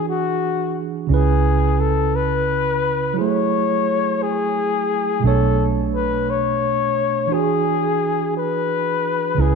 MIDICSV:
0, 0, Header, 1, 4, 480
1, 0, Start_track
1, 0, Tempo, 689655
1, 758, Time_signature, 6, 3, 24, 8
1, 6647, End_track
2, 0, Start_track
2, 0, Title_t, "Flugelhorn"
2, 0, Program_c, 0, 56
2, 59, Note_on_c, 0, 66, 82
2, 553, Note_off_c, 0, 66, 0
2, 777, Note_on_c, 0, 68, 80
2, 1253, Note_on_c, 0, 69, 78
2, 1264, Note_off_c, 0, 68, 0
2, 1498, Note_on_c, 0, 71, 92
2, 1509, Note_off_c, 0, 69, 0
2, 2208, Note_off_c, 0, 71, 0
2, 2219, Note_on_c, 0, 73, 91
2, 2940, Note_on_c, 0, 68, 92
2, 2951, Note_off_c, 0, 73, 0
2, 3657, Note_on_c, 0, 69, 78
2, 3667, Note_off_c, 0, 68, 0
2, 3940, Note_off_c, 0, 69, 0
2, 4140, Note_on_c, 0, 71, 79
2, 4385, Note_on_c, 0, 73, 96
2, 4395, Note_off_c, 0, 71, 0
2, 5104, Note_on_c, 0, 68, 85
2, 5114, Note_off_c, 0, 73, 0
2, 5811, Note_off_c, 0, 68, 0
2, 5826, Note_on_c, 0, 71, 87
2, 6548, Note_on_c, 0, 68, 79
2, 6559, Note_off_c, 0, 71, 0
2, 6647, Note_off_c, 0, 68, 0
2, 6647, End_track
3, 0, Start_track
3, 0, Title_t, "Tine electric piano"
3, 0, Program_c, 1, 4
3, 0, Control_c, 1, 64, 127
3, 0, Note_on_c, 1, 52, 58
3, 0, Note_on_c, 1, 62, 49
3, 0, Note_on_c, 1, 66, 48
3, 0, Note_on_c, 1, 68, 62
3, 725, Note_off_c, 1, 52, 0
3, 732, Note_off_c, 1, 62, 0
3, 740, Note_off_c, 1, 66, 0
3, 744, Note_on_c, 1, 49, 54
3, 760, Note_on_c, 1, 61, 52
3, 768, Control_c, 1, 64, 0
3, 772, Note_off_c, 1, 68, 0
3, 776, Note_on_c, 1, 64, 47
3, 792, Note_on_c, 1, 71, 64
3, 881, Control_c, 1, 64, 127
3, 2163, Note_off_c, 1, 49, 0
3, 2171, Note_off_c, 1, 61, 0
3, 2179, Note_off_c, 1, 64, 0
3, 2184, Note_on_c, 1, 54, 58
3, 2187, Note_off_c, 1, 71, 0
3, 2204, Note_on_c, 1, 64, 47
3, 2207, Control_c, 1, 64, 0
3, 2217, Note_on_c, 1, 68, 46
3, 2235, Note_on_c, 1, 57, 61
3, 2333, Control_c, 1, 64, 127
3, 3603, Note_off_c, 1, 54, 0
3, 3613, Note_off_c, 1, 64, 0
3, 3618, Note_on_c, 1, 47, 55
3, 3620, Note_off_c, 1, 68, 0
3, 3626, Note_off_c, 1, 57, 0
3, 3634, Note_on_c, 1, 57, 49
3, 3647, Control_c, 1, 64, 0
3, 3651, Note_on_c, 1, 62, 51
3, 3670, Note_on_c, 1, 73, 66
3, 3786, Control_c, 1, 64, 127
3, 5040, Note_off_c, 1, 47, 0
3, 5048, Note_off_c, 1, 57, 0
3, 5057, Note_off_c, 1, 62, 0
3, 5061, Note_on_c, 1, 52, 50
3, 5066, Note_off_c, 1, 73, 0
3, 5076, Note_on_c, 1, 62, 48
3, 5087, Control_c, 1, 64, 0
3, 5093, Note_on_c, 1, 66, 55
3, 5109, Note_on_c, 1, 68, 62
3, 5222, Control_c, 1, 64, 127
3, 6482, Note_off_c, 1, 52, 0
3, 6490, Note_off_c, 1, 62, 0
3, 6498, Note_off_c, 1, 66, 0
3, 6505, Note_on_c, 1, 49, 53
3, 6506, Note_off_c, 1, 68, 0
3, 6522, Note_on_c, 1, 61, 48
3, 6527, Control_c, 1, 64, 0
3, 6538, Note_on_c, 1, 64, 54
3, 6555, Note_on_c, 1, 71, 61
3, 6647, Note_off_c, 1, 49, 0
3, 6647, Note_off_c, 1, 61, 0
3, 6647, Note_off_c, 1, 64, 0
3, 6647, Note_off_c, 1, 71, 0
3, 6647, End_track
4, 0, Start_track
4, 0, Title_t, "Fingered electric bass"
4, 0, Program_c, 2, 33
4, 0, Note_on_c, 2, 40, 81
4, 734, Note_off_c, 2, 40, 0
4, 762, Note_on_c, 2, 37, 73
4, 2211, Note_off_c, 2, 37, 0
4, 2211, Note_on_c, 2, 30, 91
4, 3617, Note_off_c, 2, 30, 0
4, 3646, Note_on_c, 2, 35, 74
4, 5082, Note_off_c, 2, 35, 0
4, 5082, Note_on_c, 2, 40, 78
4, 6492, Note_off_c, 2, 40, 0
4, 6528, Note_on_c, 2, 37, 84
4, 6647, Note_off_c, 2, 37, 0
4, 6647, End_track
0, 0, End_of_file